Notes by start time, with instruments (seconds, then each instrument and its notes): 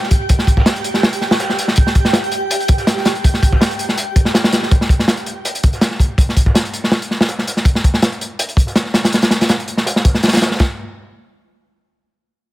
Already playing: synth texture G4 G5
0.03 snare
0.11 kick, closed hi-hat
0.21 closed hi-hat
0.29 kick, closed hi-hat
0.39 snare
0.47 kick, closed hi-hat
0.57 kick, snare
0.66 snare, closed hi-hat
0.67 snare
0.76 closed hi-hat
0.84 closed hi-hat, open hi-hat
0.94 snare, closed hi-hat
1.03 snare, closed hi-hat
1.13 closed hi-hat
1.21 snare, closed hi-hat
1.31 snare
1.40 snare, closed hi-hat
1.49 snare
1.59 snare, closed hi-hat
1.68 snare, closed hi-hat
1.76 kick, closed hi-hat
1.87 snare
1.95 kick, closed hi-hat
2.05 snare
2.13 snare, closed hi-hat
2.24 closed hi-hat
2.31 closed hi-hat
2.50 closed hi-hat
2.60 closed hi-hat
2.68 kick, closed hi-hat
2.78 snare, closed hi-hat
2.87 snare, closed hi-hat
2.98 snare
3.05 snare, closed hi-hat
3.15 closed hi-hat
3.24 kick, closed hi-hat
3.34 snare
3.42 kick, closed hi-hat
3.52 kick, snare
3.61 snare, closed hi-hat
3.71 closed hi-hat
3.79 closed hi-hat, open hi-hat
3.89 snare, closed hi-hat
3.97 closed hi-hat
4.16 kick, closed hi-hat
4.25 snare
4.34 snare, closed hi-hat
4.44 snare
4.52 snare, closed hi-hat
4.63 snare, closed hi-hat
4.71 kick, closed hi-hat
4.81 snare
4.89 kick, closed hi-hat
4.99 snare
5.08 snare, closed hi-hat
5.17 closed hi-hat
5.26 closed hi-hat
5.45 closed hi-hat
5.54 closed hi-hat
5.63 kick, closed hi-hat
5.73 snare, closed hi-hat
5.81 snare, closed hi-hat
5.91 snare
6.00 kick, closed hi-hat
6.10 closed hi-hat
6.18 kick, closed hi-hat
6.29 snare
6.37 kick, closed hi-hat
6.46 kick, snare
6.54 snare, closed hi-hat
6.65 closed hi-hat
6.73 closed hi-hat, open hi-hat
6.83 snare, closed hi-hat
6.92 snare, closed hi-hat
7.02 closed hi-hat
7.10 snare, closed hi-hat
7.21 snare
7.28 snare, closed hi-hat
7.38 snare
7.47 snare, closed hi-hat
7.57 snare, closed hi-hat
7.65 kick, closed hi-hat
7.75 snare
7.84 kick, closed hi-hat
7.94 snare
8.02 snare, closed hi-hat
8.12 closed hi-hat
8.21 closed hi-hat
8.39 closed hi-hat
8.48 closed hi-hat
8.57 kick, closed hi-hat
8.67 snare, closed hi-hat
8.76 snare, closed hi-hat
8.86 snare
8.94 snare, closed hi-hat
8.96 snare
9.05 snare, closed hi-hat
9.12 snare, closed hi-hat
9.22 snare, closed hi-hat
9.31 snare, closed hi-hat
9.41 snare, closed hi-hat
9.49 snare, closed hi-hat
9.59 closed hi-hat
9.68 closed hi-hat, open hi-hat
9.77 snare, closed hi-hat
9.86 snare, closed hi-hat
9.96 snare, closed hi-hat
10.05 kick, snare, closed hi-hat
10.14 snare
10.23 snare, closed hi-hat
10.28 snare, closed hi-hat
10.33 snare, closed hi-hat
10.37 snare, closed hi-hat
10.41 snare, closed hi-hat
10.47 snare, closed hi-hat
10.51 snare, closed hi-hat
10.56 kick, snare, closed hi-hat
10.60 snare